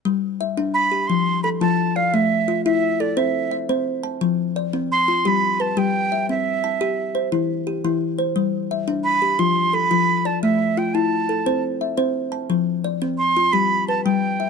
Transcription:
X:1
M:12/8
L:1/8
Q:3/8=116
K:Gmix
V:1 name="Flute"
z4 b2 c'2 b a2 f | e3 e2 d e2 z4 | z4 c'2 b2 a g3 | e6 z6 |
z4 b2 c'2 b3 a | e2 g a4 z4 z | z4 c'2 b2 a g3 |]
V:2 name="Kalimba"
z2 e3 G2 z A F2 d- | d z F3 A c2 e c2 a- | a z d3 F G2 B G2 e- | e z a3 c E2 G E2 c- |
c z e3 G F2 A F2 d- | d z F3 A c2 e c2 a- | a z d3 F G2 B3 e |]
V:3 name="Kalimba" clef=bass
G,2 z D2 z F,2 z F,2 z | A,2 z E2 z C2 z C2 z | F,2 z C2 z G,2 z G,2 z | C2 z G2 z E,2 z E,2 z |
G,2 z D2 z F,2 z F,2 z | A,2 z E2 z C2 z C2 z | F,2 z C2 z G,2 z G,2 z |]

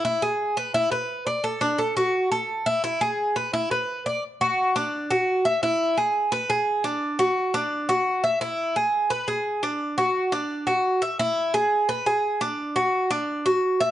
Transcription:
X:1
M:4/4
L:1/8
Q:1/4=172
K:Dlyd
V:1 name="Cuban tres"
E G2 B E B2 d | A D A F2 A2 E | E G2 B E B2 d | z F2 D2 F2 e |
E2 G2 B G2 D- | D F2 D2 F2 e | E2 G2 B G2 D- | D F2 D2 F2 e |
E2 G2 B G2 D- | D F2 D2 F2 e |]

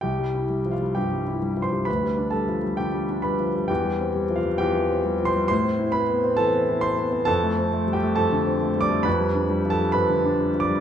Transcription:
X:1
M:4/4
L:1/8
Q:1/4=133
K:C
V:1 name="Grand piano"
[Gg]3 [Ff] [Gg]3 [cc'] | [Bb]2 [Aa]2 [Gg]2 [Bb]2 | [Gg]3 [Ff] [Gg]3 [cc'] | [cc']2 [Bb]2 [Aa]2 [cc']2 |
[Aa]3 [Gg] [Aa]3 [dd'] | [Bb]3 [Aa] [Bb]3 [dd'] |]
V:2 name="Grand piano" clef=bass
(3C,, G, E (3G, F, G, (3G,, G, E (3G, F, G, | (3D,, G, D (3G, F, G, (3D, G, D (3G, F, G, | (3E,, G, C (3G, F, G, (3E,, E, C (3G, F, G, | (3A,, C E (3C B, C (3E, C E (3C B, C |
(3F,, A, C (3A, G, A, (3F,, D, C (3A, G, A, | (3F,, G, D (3G, F, G, (3F,, D, D (3G, F, G, |]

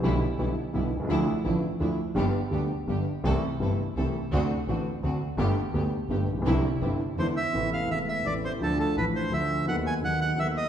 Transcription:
X:1
M:3/4
L:1/16
Q:1/4=169
K:Gmix
V:1 name="Bandoneon"
z12 | z12 | z12 | z12 |
z12 | z12 | z8 c2 e2- | [K:Ddor] e2 f2 e2 e2 d2 c2 |
A2 A2 B2 c2 e4 | ^f2 ^g2 f2 f2 e2 ^d2 |]
V:2 name="Vibraphone"
G4 z8 | z12 | z12 | z12 |
z12 | z12 | z12 | [K:Ddor] z12 |
z12 | z12 |]
V:3 name="String section"
[G,B,E]2 z2 [G,B,E]2 z2 [G,B,E]2 z2 | [F,DE]2 z2 [F,DE]2 z2 [F,DE]2 z2 | [B,DG]2 z2 [B,DG]2 z2 [B,DG]2 z2 | [CEA]2 z2 [CEA]2 z2 [CEA]2 z2 |
[CD^F]2 z2 [CDF]2 z2 [CDF]2 z2 | [A,B,G]2 z2 [A,B,G]2 z2 [A,B,G]2 z2 | [CDE]2 z2 [CDE]2 z2 [^G,DE]2 z2 | [K:Ddor] z12 |
z12 | z12 |]
V:4 name="Grand piano" clef=bass
[B,,,B,,D,G,B,E]2 z2 [B,,,B,,D,G,B,E]2 z2 [B,,,B,,D,G,B,E]2 z/2 B,,,/2 C,,/2 _D,,/2 | [D,,D,F,A,E]2 z2 [A,,,A,,D,F,A,E]2 z2 [D,,D,F,A,E]2 z2 | [G,,,G,,D,G,B,G]2 z2 [D,,D,G,B,G]2 z2 [G,,,G,,D,G,B,G]2 z2 | [C,,C,E,A,CG]2 z2 [G,,,G,,E,A,CG]2 z2 [C,,C,E,A,CG]2 z2 |
[D,,D,A,C^F]2 z2 [A,,,A,,D,A,CF]2 z2 [D,,D,A,CF]2 z2 | [G,,,G,,D,A,B,G]2 z2 [D,,D,A,B,G]2 z2 [G,,,G,,D,A,B,G]2 z/2 A,,,/2 _B,,,/2 =B,,,/2 | [C,,C,D,G,CE]2 z2 [G,,,G,,D,G,CE]2 z2 [E,,D,E,^G,B,E]2 z2 | [K:Ddor] [A,,,A,,C,A,B,E]4 [E,,,E,,C,A,B,]4 [A,,,A,,C,A,B,E]4 |
[D,,D,F,A,DA]4 [A,,,A,,F,A,DA]4 [D,,D,F,A,DA]4 | [^D,,^D,^F,B,^DA]4 [D,,D,F,B,DA]4 [D,,D,F,B,DA]4 |]
V:5 name="Double bass" clef=bass
B,,,2 z2 B,,,2 z2 B,,,2 C,,2 | D,,2 z2 A,,,2 z2 D,,2 z2 | G,,,2 z2 D,,2 z2 G,,,2 z2 | C,,2 z2 G,,,2 z2 C,,2 z2 |
D,,2 z2 A,,,2 z2 D,,2 z2 | G,,,2 z2 D,,2 z2 G,,,2 _B,,,2 | C,,2 z2 G,,,2 z2 E,,2 z2 | [K:Ddor] A,,,4 E,,,4 A,,,4 |
D,,4 A,,,4 D,,4 | ^D,,4 D,,4 D,,4 |]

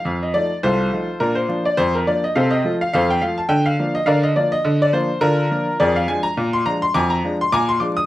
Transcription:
X:1
M:2/4
L:1/16
Q:"Swing 16ths" 1/4=104
K:Bb
V:1 name="Upright piano"
f e d2 [FAc]4 | [DFB] c2 d c B d e | [Acf] e2 f [Acf] g f a | g f2 e [Bdf] e d e- |
e d c2 [DFB]4 | [K:Bbmix] [ABd] f a b2 c' b c' | [abd'] b2 c' [abd'] c' d' e' |]
V:2 name="Upright piano" clef=bass
F,,2 [F,A,E]2 C,,2 [F,A,E]2 | B,,2 [F,B,D]2 F,,2 [F,B,D]2 | C,2 [F,A,F]2 F,,2 [F,A,F]2 | D,2 [F,B,D]2 D,2 [F,B,D]2 |
D,2 [F,B,D]2 D,2 [F,B,D]2 | [K:Bbmix] F,,2 [F,A,D]2 B,,2 [F,A,D]2 | F,,2 [F,A,D]2 B,,2 [F,A,D]2 |]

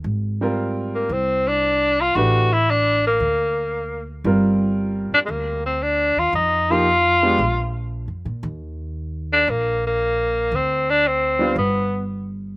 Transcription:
X:1
M:4/4
L:1/16
Q:"Swing" 1/4=115
K:Eb
V:1 name="Tenor saxophone"
z6 B,2 C2 D4 F2 | _G2 =E2 D2 B,8 z2 | z6 D3/2 A,/2 B,2 C2 D2 F2 | E2 F8 z6 |
z6 D2 B,2 B,6 | C2 D2 C4 =B,4 z4 |]
V:2 name="Upright piano"
z2 [G,CFB]6 z8 | [=A,DG=B]2 z12 z2 | [G,CFB]8- [G,CFB]2 z6 | z2 [F,B,EG]2 z2 [A,_CDG]2 z8 |
z16 | z6 [G,_CDF]2 z8 |]
V:3 name="Upright bass" clef=bass
A,,,8 C,,8 | =A,,,8 D,,8 | G,,,6 z2 D,,6 E,,2 | F,,8 B,,,4- (3B,,,2 F,,2 B,,2 |
E,,8 B,,,8 | D,,8 G,,,8 |]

